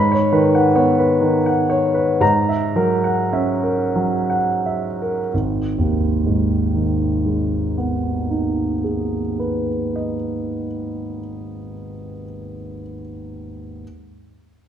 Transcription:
0, 0, Header, 1, 2, 480
1, 0, Start_track
1, 0, Key_signature, 5, "minor"
1, 0, Tempo, 852273
1, 424, Tempo, 946372
1, 904, Tempo, 1039861
1, 1384, Tempo, 1192843
1, 1864, Tempo, 1379310
1, 2344, Time_signature, 5, 2, 24, 8
1, 2344, Tempo, 1268499
1, 3304, Tempo, 1232033
1, 4744, Tempo, 1293103
1, 5909, End_track
2, 0, Start_track
2, 0, Title_t, "Grand piano"
2, 0, Program_c, 0, 0
2, 0, Note_on_c, 0, 44, 38
2, 0, Note_on_c, 0, 83, 50
2, 65, Note_on_c, 0, 73, 33
2, 72, Control_c, 0, 64, 127
2, 138, Note_off_c, 0, 83, 0
2, 182, Note_on_c, 0, 51, 32
2, 184, Note_on_c, 0, 71, 32
2, 255, Note_off_c, 0, 73, 0
2, 308, Note_on_c, 0, 78, 33
2, 376, Note_off_c, 0, 71, 0
2, 424, Note_on_c, 0, 59, 26
2, 425, Note_on_c, 0, 73, 30
2, 495, Note_off_c, 0, 78, 0
2, 544, Note_on_c, 0, 71, 32
2, 561, Note_off_c, 0, 51, 0
2, 609, Note_off_c, 0, 73, 0
2, 657, Note_on_c, 0, 51, 29
2, 732, Note_off_c, 0, 71, 0
2, 783, Note_on_c, 0, 78, 33
2, 803, Note_off_c, 0, 59, 0
2, 854, Note_off_c, 0, 51, 0
2, 902, Note_on_c, 0, 73, 32
2, 976, Note_off_c, 0, 78, 0
2, 1016, Note_on_c, 0, 71, 29
2, 1091, Note_off_c, 0, 73, 0
2, 1122, Note_off_c, 0, 44, 0
2, 1137, Note_off_c, 0, 71, 0
2, 1138, Note_on_c, 0, 44, 33
2, 1141, Note_on_c, 0, 82, 42
2, 1150, Control_c, 0, 64, 0
2, 1269, Note_on_c, 0, 76, 29
2, 1272, Control_c, 0, 64, 127
2, 1335, Note_off_c, 0, 82, 0
2, 1391, Note_on_c, 0, 54, 27
2, 1393, Note_on_c, 0, 70, 30
2, 1455, Note_off_c, 0, 76, 0
2, 1505, Note_on_c, 0, 78, 26
2, 1571, Note_off_c, 0, 70, 0
2, 1621, Note_on_c, 0, 61, 27
2, 1622, Note_on_c, 0, 76, 27
2, 1691, Note_off_c, 0, 78, 0
2, 1744, Note_on_c, 0, 70, 25
2, 1765, Note_off_c, 0, 54, 0
2, 1816, Note_off_c, 0, 76, 0
2, 1872, Note_on_c, 0, 54, 24
2, 1937, Note_off_c, 0, 70, 0
2, 1991, Note_on_c, 0, 78, 26
2, 2008, Note_off_c, 0, 61, 0
2, 2059, Note_off_c, 0, 54, 0
2, 2117, Note_on_c, 0, 76, 24
2, 2187, Note_off_c, 0, 78, 0
2, 2243, Note_on_c, 0, 70, 19
2, 2305, Note_off_c, 0, 76, 0
2, 2330, Note_off_c, 0, 44, 0
2, 2351, Note_off_c, 0, 70, 0
2, 2354, Note_on_c, 0, 32, 25
2, 2355, Control_c, 0, 64, 0
2, 2453, Control_c, 0, 64, 127
2, 2523, Note_on_c, 0, 39, 24
2, 2704, Note_on_c, 0, 44, 23
2, 2886, Note_on_c, 0, 51, 20
2, 3081, Note_on_c, 0, 56, 23
2, 3276, Note_on_c, 0, 59, 22
2, 3482, Note_on_c, 0, 63, 19
2, 3653, Note_off_c, 0, 32, 0
2, 3691, Note_on_c, 0, 68, 20
2, 3827, Note_off_c, 0, 39, 0
2, 3907, Note_on_c, 0, 71, 20
2, 4013, Note_off_c, 0, 44, 0
2, 4125, Note_on_c, 0, 75, 18
2, 4201, Note_off_c, 0, 51, 0
2, 4401, Note_off_c, 0, 56, 0
2, 4603, Note_off_c, 0, 59, 0
2, 4807, Note_off_c, 0, 63, 0
2, 5005, Note_off_c, 0, 68, 0
2, 5211, Note_off_c, 0, 71, 0
2, 5287, Note_off_c, 0, 75, 0
2, 5594, Control_c, 0, 64, 0
2, 5909, End_track
0, 0, End_of_file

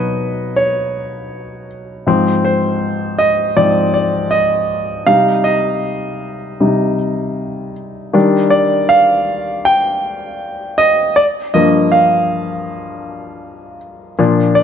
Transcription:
0, 0, Header, 1, 2, 480
1, 0, Start_track
1, 0, Key_signature, -3, "major"
1, 0, Tempo, 750939
1, 1330, Time_signature, 4, 2, 24, 8
1, 3247, Tempo, 765306
1, 6127, Tempo, 752823
1, 9291, End_track
2, 0, Start_track
2, 0, Title_t, "Grand piano"
2, 0, Program_c, 0, 0
2, 0, Control_c, 0, 64, 127
2, 0, Note_on_c, 0, 47, 43
2, 0, Note_on_c, 0, 54, 34
2, 0, Note_on_c, 0, 63, 44
2, 0, Note_on_c, 0, 71, 53
2, 0, Note_on_c, 0, 73, 75
2, 0, Note_on_c, 0, 75, 67
2, 361, Note_off_c, 0, 73, 0
2, 361, Note_on_c, 0, 73, 61
2, 382, Note_off_c, 0, 71, 0
2, 1061, Note_off_c, 0, 73, 0
2, 1320, Note_on_c, 0, 44, 42
2, 1327, Note_on_c, 0, 53, 40
2, 1327, Note_on_c, 0, 60, 51
2, 1338, Control_c, 0, 64, 0
2, 1339, Note_off_c, 0, 47, 0
2, 1340, Note_off_c, 0, 54, 0
2, 1343, Note_off_c, 0, 63, 0
2, 1344, Note_off_c, 0, 75, 0
2, 1435, Control_c, 0, 64, 127
2, 1563, Note_on_c, 0, 72, 61
2, 1642, Note_off_c, 0, 44, 0
2, 1646, Note_off_c, 0, 53, 0
2, 1646, Note_off_c, 0, 60, 0
2, 2018, Note_off_c, 0, 72, 0
2, 2036, Note_on_c, 0, 75, 68
2, 2279, Note_on_c, 0, 53, 36
2, 2279, Note_on_c, 0, 74, 75
2, 2281, Note_on_c, 0, 44, 40
2, 2286, Note_on_c, 0, 60, 42
2, 2288, Note_off_c, 0, 75, 0
2, 2498, Note_off_c, 0, 53, 0
2, 2499, Note_off_c, 0, 44, 0
2, 2502, Note_off_c, 0, 60, 0
2, 2507, Note_off_c, 0, 74, 0
2, 2516, Note_on_c, 0, 74, 62
2, 2753, Note_on_c, 0, 75, 67
2, 2768, Note_off_c, 0, 74, 0
2, 3238, Note_on_c, 0, 48, 40
2, 3238, Note_on_c, 0, 77, 82
2, 3244, Note_on_c, 0, 55, 39
2, 3249, Note_on_c, 0, 63, 45
2, 3256, Note_off_c, 0, 75, 0
2, 3256, Control_c, 0, 64, 0
2, 3357, Control_c, 0, 64, 127
2, 3464, Note_off_c, 0, 77, 0
2, 3473, Note_on_c, 0, 75, 67
2, 3559, Note_off_c, 0, 48, 0
2, 3562, Note_off_c, 0, 55, 0
2, 3565, Note_off_c, 0, 63, 0
2, 4202, Note_on_c, 0, 55, 31
2, 4203, Note_on_c, 0, 48, 40
2, 4207, Note_on_c, 0, 63, 36
2, 4420, Note_off_c, 0, 48, 0
2, 4420, Note_off_c, 0, 55, 0
2, 4423, Note_off_c, 0, 63, 0
2, 4899, Note_off_c, 0, 75, 0
2, 5163, Note_on_c, 0, 51, 52
2, 5166, Note_on_c, 0, 55, 46
2, 5169, Note_on_c, 0, 62, 57
2, 5180, Control_c, 0, 64, 0
2, 5293, Control_c, 0, 64, 127
2, 5395, Note_on_c, 0, 74, 67
2, 5636, Note_on_c, 0, 77, 85
2, 5649, Note_off_c, 0, 74, 0
2, 5859, Note_off_c, 0, 51, 0
2, 5860, Note_off_c, 0, 55, 0
2, 5862, Note_off_c, 0, 62, 0
2, 6115, Note_on_c, 0, 79, 88
2, 6134, Note_off_c, 0, 77, 0
2, 6814, Note_off_c, 0, 79, 0
2, 6833, Note_on_c, 0, 75, 83
2, 7076, Note_on_c, 0, 74, 85
2, 7087, Note_off_c, 0, 75, 0
2, 7095, Control_c, 0, 64, 0
2, 7131, Note_off_c, 0, 74, 0
2, 7214, Control_c, 0, 64, 127
2, 7317, Note_on_c, 0, 75, 73
2, 7320, Note_on_c, 0, 43, 48
2, 7321, Note_on_c, 0, 53, 46
2, 7325, Note_on_c, 0, 58, 50
2, 7558, Note_on_c, 0, 77, 67
2, 7569, Note_off_c, 0, 75, 0
2, 8736, Note_off_c, 0, 77, 0
2, 8978, Note_off_c, 0, 43, 0
2, 8978, Note_off_c, 0, 53, 0
2, 8980, Note_off_c, 0, 58, 0
2, 9006, Note_on_c, 0, 46, 55
2, 9011, Note_on_c, 0, 53, 48
2, 9014, Note_on_c, 0, 62, 55
2, 9015, Control_c, 0, 64, 0
2, 9127, Control_c, 0, 64, 127
2, 9238, Note_on_c, 0, 74, 74
2, 9291, Note_off_c, 0, 46, 0
2, 9291, Note_off_c, 0, 53, 0
2, 9291, Note_off_c, 0, 62, 0
2, 9291, Note_off_c, 0, 74, 0
2, 9291, End_track
0, 0, End_of_file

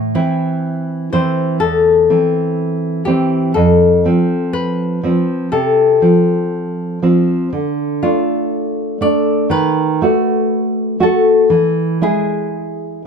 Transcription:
0, 0, Header, 1, 3, 480
1, 0, Start_track
1, 0, Key_signature, 0, "minor"
1, 0, Tempo, 978793
1, 1744, Time_signature, 4, 2, 24, 8
1, 3195, Tempo, 1000000
1, 5595, Tempo, 1030928
1, 6318, End_track
2, 0, Start_track
2, 0, Title_t, "Nylon-string guitar"
2, 0, Program_c, 0, 24
2, 73, Note_on_c, 0, 64, 35
2, 536, Note_off_c, 0, 64, 0
2, 552, Note_on_c, 0, 72, 45
2, 775, Note_off_c, 0, 72, 0
2, 784, Note_on_c, 0, 69, 46
2, 1481, Note_off_c, 0, 69, 0
2, 1496, Note_on_c, 0, 67, 42
2, 1723, Note_off_c, 0, 67, 0
2, 1737, Note_on_c, 0, 69, 47
2, 2206, Note_off_c, 0, 69, 0
2, 2223, Note_on_c, 0, 71, 51
2, 2689, Note_off_c, 0, 71, 0
2, 2706, Note_on_c, 0, 69, 46
2, 3419, Note_off_c, 0, 69, 0
2, 3920, Note_on_c, 0, 65, 38
2, 4375, Note_off_c, 0, 65, 0
2, 4396, Note_on_c, 0, 74, 49
2, 4620, Note_off_c, 0, 74, 0
2, 4633, Note_on_c, 0, 71, 55
2, 5336, Note_off_c, 0, 71, 0
2, 5361, Note_on_c, 0, 69, 41
2, 5582, Note_off_c, 0, 69, 0
2, 5835, Note_on_c, 0, 68, 47
2, 6297, Note_off_c, 0, 68, 0
2, 6318, End_track
3, 0, Start_track
3, 0, Title_t, "Nylon-string guitar"
3, 0, Program_c, 1, 24
3, 0, Note_on_c, 1, 45, 32
3, 65, Note_off_c, 1, 45, 0
3, 73, Note_on_c, 1, 52, 31
3, 76, Note_on_c, 1, 60, 32
3, 535, Note_off_c, 1, 52, 0
3, 537, Note_off_c, 1, 60, 0
3, 556, Note_on_c, 1, 52, 27
3, 557, Note_on_c, 1, 60, 28
3, 774, Note_off_c, 1, 52, 0
3, 774, Note_off_c, 1, 60, 0
3, 794, Note_on_c, 1, 40, 31
3, 1022, Note_off_c, 1, 40, 0
3, 1030, Note_on_c, 1, 52, 25
3, 1031, Note_on_c, 1, 60, 29
3, 1486, Note_off_c, 1, 52, 0
3, 1487, Note_off_c, 1, 60, 0
3, 1505, Note_on_c, 1, 52, 29
3, 1508, Note_on_c, 1, 60, 33
3, 1725, Note_off_c, 1, 52, 0
3, 1726, Note_off_c, 1, 60, 0
3, 1745, Note_on_c, 1, 41, 38
3, 1978, Note_off_c, 1, 41, 0
3, 1988, Note_on_c, 1, 53, 32
3, 1990, Note_on_c, 1, 60, 35
3, 2456, Note_off_c, 1, 53, 0
3, 2456, Note_off_c, 1, 60, 0
3, 2469, Note_on_c, 1, 53, 29
3, 2473, Note_on_c, 1, 60, 31
3, 2690, Note_off_c, 1, 53, 0
3, 2692, Note_off_c, 1, 60, 0
3, 2707, Note_on_c, 1, 48, 36
3, 2941, Note_off_c, 1, 48, 0
3, 2952, Note_on_c, 1, 53, 29
3, 2954, Note_on_c, 1, 60, 31
3, 3422, Note_off_c, 1, 53, 0
3, 3424, Note_off_c, 1, 60, 0
3, 3439, Note_on_c, 1, 53, 31
3, 3442, Note_on_c, 1, 60, 39
3, 3665, Note_off_c, 1, 53, 0
3, 3666, Note_off_c, 1, 60, 0
3, 3680, Note_on_c, 1, 50, 37
3, 3916, Note_off_c, 1, 50, 0
3, 3920, Note_on_c, 1, 57, 31
3, 3924, Note_on_c, 1, 62, 35
3, 4375, Note_off_c, 1, 57, 0
3, 4376, Note_off_c, 1, 62, 0
3, 4391, Note_on_c, 1, 57, 33
3, 4395, Note_on_c, 1, 62, 35
3, 4616, Note_off_c, 1, 57, 0
3, 4617, Note_off_c, 1, 62, 0
3, 4626, Note_on_c, 1, 51, 40
3, 4869, Note_off_c, 1, 51, 0
3, 4876, Note_on_c, 1, 57, 31
3, 4880, Note_on_c, 1, 66, 35
3, 5336, Note_off_c, 1, 57, 0
3, 5338, Note_off_c, 1, 66, 0
3, 5347, Note_on_c, 1, 57, 37
3, 5350, Note_on_c, 1, 66, 41
3, 5573, Note_off_c, 1, 57, 0
3, 5573, Note_off_c, 1, 66, 0
3, 5587, Note_on_c, 1, 52, 43
3, 5825, Note_off_c, 1, 52, 0
3, 5828, Note_on_c, 1, 56, 34
3, 5831, Note_on_c, 1, 64, 38
3, 6294, Note_off_c, 1, 56, 0
3, 6295, Note_off_c, 1, 64, 0
3, 6318, End_track
0, 0, End_of_file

